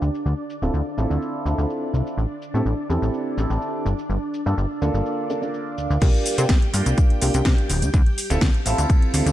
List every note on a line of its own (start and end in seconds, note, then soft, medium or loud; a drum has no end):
0.00 0.10 D2 medium
0.00 6.03 D4 medium
0.00 6.03 D5 medium
0.00 shaker medium
0.15 shaker soft
0.26 0.34 D2 loud
0.26 shaker soft
0.50 shaker medium
0.62 0.70 D1 medium
0.62 0.69 C4 medium
0.62 0.69 E4 medium
0.62 0.69 F4 medium
0.62 0.69 A4 loud
0.62 shaker soft
0.74 0.82 D2 medium
0.74 shaker soft
0.98 1.06 A1 medium
0.98 1.43 C4 medium
0.98 1.43 E4 medium
0.98 1.43 F4 medium
0.98 1.43 A4 medium
0.98 shaker medium
1.10 1.18 D2 medium
1.10 shaker soft
1.22 shaker soft
1.46 1.54 D2 medium
1.46 1.55 C4 medium
1.46 1.55 E4 medium
1.46 1.55 F4 medium
1.46 1.56 A4 medium
1.46 shaker medium
1.58 1.66 D2 medium
1.58 2.16 C4 medium
1.58 2.16 E4 medium
1.58 2.17 F4 medium
1.58 2.17 A4 medium
1.58 shaker soft
1.70 shaker soft
1.94 2.02 C2 medium
1.94 shaker medium
2.07 shaker soft
2.18 2.26 A1 loud
2.18 shaker soft
2.42 shaker medium
2.54 2.62 A2 medium
2.54 2.61 C4 medium
2.54 2.61 E4 medium
2.54 2.61 G4 medium
2.54 2.61 A4 loud
2.54 shaker soft
2.66 2.74 A1 medium
2.66 shaker soft
2.89 2.98 E2 medium
2.89 3.35 C4 medium
2.89 3.35 E4 medium
2.89 3.35 G4 medium
2.89 3.35 A4 loud
2.89 shaker medium
3.02 3.10 A1 medium
3.02 shaker soft
3.14 shaker soft
3.38 3.46 A1 medium
3.38 3.47 C4 medium
3.38 3.47 E4 medium
3.38 3.48 G4 medium
3.38 3.48 A4 medium
3.38 shaker medium
3.50 3.58 A1 medium
3.50 3.84 C4 medium
3.50 3.84 E4 medium
3.50 3.85 G4 medium
3.50 3.85 A4 medium
3.50 shaker soft
3.62 shaker soft
3.86 3.94 G1 medium
3.86 shaker medium
3.99 shaker soft
4.10 4.18 G1 loud
4.10 shaker soft
4.34 shaker medium
4.46 4.54 G2 medium
4.46 4.53 A#3 medium
4.46 4.53 D4 medium
4.46 4.53 F4 medium
4.46 4.53 A4 loud
4.46 shaker soft
4.58 4.66 G1 loud
4.58 shaker soft
4.81 4.90 D2 medium
4.81 5.27 A#3 medium
4.81 5.27 D4 medium
4.81 5.27 F4 medium
4.81 5.27 A4 loud
4.81 shaker medium
4.94 5.02 G1 medium
4.94 shaker soft
5.06 shaker soft
5.30 5.39 A#3 medium
5.30 5.39 D4 medium
5.30 5.40 F4 medium
5.30 5.40 A4 medium
5.30 shaker medium
5.41 6.00 A#3 medium
5.41 6.00 D4 medium
5.41 6.00 F4 medium
5.41 6.01 A4 medium
5.41 shaker soft
5.54 shaker soft
5.78 5.88 D2 soft
5.78 shaker medium
5.90 5.98 D2 medium
5.90 shaker soft
6.02 6.10 C2 loud
6.02 6.33 A#3 loud
6.02 6.33 D4 medium
6.02 6.33 F4 medium
6.02 9.32 G4 medium
6.02 6.34 G4 loud
6.02 9.32 G5 medium
6.02 kick loud
6.02 closed hi-hat medium
6.02 crash loud
6.02 shaker soft
6.14 closed hi-hat soft
6.26 open hi-hat loud
6.26 shaker medium
6.38 6.46 C3 loud
6.38 6.45 A#3 medium
6.38 6.45 D4 medium
6.38 6.45 F4 medium
6.38 6.45 G4 loud
6.38 closed hi-hat medium
6.38 shaker soft
6.49 6.58 C2 loud
6.49 kick loud
6.49 snare loud
6.49 closed hi-hat medium
6.49 shaker soft
6.62 closed hi-hat soft
6.73 6.82 G2 medium
6.73 7.19 A#3 medium
6.73 7.19 D4 medium
6.73 7.19 F4 medium
6.73 7.19 G4 loud
6.73 open hi-hat loud
6.73 shaker medium
6.86 6.94 C2 medium
6.86 closed hi-hat medium
6.86 shaker soft
6.98 kick loud
6.98 closed hi-hat medium
6.98 shaker soft
7.10 closed hi-hat soft
7.21 7.30 C2 medium
7.21 7.31 A#3 medium
7.21 7.31 D4 medium
7.21 7.31 F4 medium
7.21 7.32 G4 loud
7.21 open hi-hat loud
7.21 shaker medium
7.34 7.42 C2 medium
7.34 7.68 A#3 medium
7.34 7.68 D4 medium
7.34 7.68 F4 medium
7.34 7.69 G4 medium
7.34 closed hi-hat medium
7.34 shaker soft
7.45 7.54 C3 medium
7.45 kick loud
7.45 snare loud
7.45 closed hi-hat medium
7.45 shaker soft
7.58 closed hi-hat soft
7.70 7.84 D1 medium
7.70 open hi-hat medium
7.70 shaker medium
7.82 7.90 D2 loud
7.82 closed hi-hat medium
7.82 shaker soft
7.94 8.02 D2 loud
7.94 kick loud
7.94 closed hi-hat medium
7.94 shaker soft
8.06 closed hi-hat soft
8.18 open hi-hat loud
8.18 shaker medium
8.30 8.38 D1 loud
8.30 8.37 C4 loud
8.30 8.37 E4 medium
8.30 8.37 F4 medium
8.30 8.38 A4 loud
8.30 closed hi-hat medium
8.30 shaker soft
8.41 8.50 D2 loud
8.41 kick loud
8.41 snare loud
8.41 closed hi-hat medium
8.41 shaker soft
8.54 closed hi-hat soft
8.66 8.74 A1 medium
8.66 9.11 C4 medium
8.66 9.11 E4 medium
8.66 9.11 F4 medium
8.66 9.11 A4 loud
8.66 open hi-hat loud
8.66 shaker medium
8.78 8.86 D2 medium
8.78 closed hi-hat medium
8.78 shaker soft
8.90 kick loud
8.90 closed hi-hat medium
8.90 shaker soft
9.02 closed hi-hat soft
9.13 9.22 D2 medium
9.13 9.23 C4 medium
9.13 9.23 E4 medium
9.13 9.23 F4 medium
9.13 9.24 A4 medium
9.13 open hi-hat loud
9.13 shaker medium
9.26 9.32 D2 medium
9.26 9.32 C4 medium
9.26 9.32 E4 medium
9.26 9.32 F4 medium
9.26 9.32 A4 medium
9.26 closed hi-hat medium
9.26 shaker soft